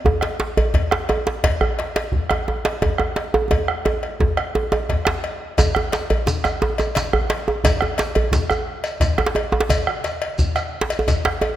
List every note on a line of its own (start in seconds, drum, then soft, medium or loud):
0.05 bombo low medium
0.05 djembe tone medium
0.05 djembe bass medium
0.21 bombo rim medium
0.21 cowbell soft
0.21 djembe slap medium
0.40 djembe slap medium
0.57 cowbell soft
0.57 djembe bass medium
0.74 bombo low medium
0.74 cowbell soft
0.74 djembe slap medium
0.74 djembe bass medium
0.91 bombo rim medium
0.91 djembe slap medium
0.91 djembe tone medium
1.09 cowbell soft
1.09 djembe tone medium
1.27 djembe slap medium
1.44 bombo low medium
1.44 cowbell medium
1.44 djembe slap soft
1.44 djembe slap medium
1.44 djembe bass medium
1.61 bombo rim medium
1.61 djembe tone medium
1.61 djembe bass medium
1.79 cowbell soft
1.79 djembe slap medium
1.96 cowbell soft
1.96 djembe slap medium
2.12 bombo low medium
2.12 djembe bass medium
2.30 bombo rim medium
2.30 cowbell soft
2.30 djembe tone medium
2.48 djembe tone medium
2.65 cowbell soft
2.65 djembe slap medium
2.82 bombo low medium
2.82 cowbell soft
2.82 djembe slap medium
2.82 djembe tone medium
2.82 djembe bass medium
2.98 bombo rim medium
2.98 djembe tone medium
3.16 cowbell soft
3.16 djembe slap medium
3.34 djembe tone loud
3.51 bombo low medium
3.51 cowbell soft
3.51 djembe slap soft
3.51 djembe tone medium
3.51 djembe bass medium
3.68 bombo rim medium
3.68 djembe tone soft
3.85 bombo rim soft
3.85 cowbell soft
3.85 djembe slap medium
3.85 djembe tone medium
4.03 bombo rim soft
4.03 cowbell soft
4.03 djembe slap soft
4.20 bombo low medium
4.20 djembe tone loud
4.20 djembe bass medium
4.37 bombo rim medium
4.37 cowbell soft
4.37 djembe slap soft
4.37 djembe tone soft
4.55 djembe tone medium
4.72 cowbell soft
4.72 djembe tone loud
4.89 bombo rim soft
4.89 bombo low medium
4.89 cowbell soft
4.89 djembe slap medium
4.89 djembe bass medium
5.05 bombo rim medium
5.05 djembe slap loud
5.05 djembe tone medium
5.24 cowbell soft
5.24 djembe slap soft
5.58 bombo low medium
5.58 cowbell medium
5.58 djembe slap soft
5.58 djembe tone loud
5.58 djembe bass medium
5.58 shekere medium
5.75 bombo rim medium
5.75 djembe tone medium
5.92 cowbell soft
5.92 djembe slap medium
5.92 shekere soft
6.10 cowbell soft
6.10 djembe bass medium
6.26 djembe slap medium
6.26 djembe bass medium
6.26 shekere medium
6.44 bombo rim medium
6.44 cowbell soft
6.44 djembe tone medium
6.44 shekere soft
6.62 djembe tone loud
6.78 cowbell soft
6.78 djembe tone medium
6.78 shekere soft
6.95 cowbell medium
6.95 djembe slap medium
6.95 shekere medium
7.13 bombo rim medium
7.13 djembe tone medium
7.13 djembe bass medium
7.30 cowbell medium
7.30 djembe slap medium
7.48 djembe tone medium
7.64 bombo low loud
7.64 cowbell medium
7.64 djembe slap soft
7.64 djembe tone loud
7.64 djembe bass medium
7.64 shekere medium
7.81 bombo rim medium
7.81 djembe tone medium
7.98 cowbell medium
7.98 djembe slap medium
7.98 shekere soft
8.15 cowbell medium
8.15 djembe bass medium
8.32 bombo low loud
8.32 djembe slap medium
8.32 djembe bass medium
8.32 shekere medium
8.50 bombo rim medium
8.50 djembe tone medium
8.50 shekere soft
8.84 cowbell medium
8.84 shekere soft
9.00 bombo low loud
9.00 cowbell medium
9.00 djembe slap medium
9.00 djembe bass medium
9.00 shekere medium
9.18 bombo rim medium
9.18 djembe tone medium
9.18 djembe tone loud
9.26 djembe slap medium
9.35 cowbell medium
9.35 djembe tone medium
9.52 djembe tone loud
9.60 djembe slap medium
9.69 bombo low medium
9.69 cowbell medium
9.69 djembe slap soft
9.69 djembe tone medium
9.69 djembe bass medium
9.69 shekere medium
9.87 bombo rim medium
9.87 djembe tone medium
10.04 cowbell medium
10.04 djembe slap medium
10.04 shekere soft
10.22 cowbell medium
10.38 bombo low medium
10.38 djembe bass medium
10.38 shekere medium
10.55 bombo rim medium
10.55 cowbell soft
10.55 djembe tone medium
10.55 shekere soft
10.81 djembe slap medium
10.90 cowbell medium
10.90 shekere soft
10.99 djembe tone medium
11.08 bombo low medium
11.08 cowbell medium
11.08 djembe slap medium
11.08 djembe bass medium
11.08 shekere medium
11.25 bombo rim medium
11.25 djembe slap medium
11.25 djembe tone medium
11.41 cowbell medium
11.41 djembe tone medium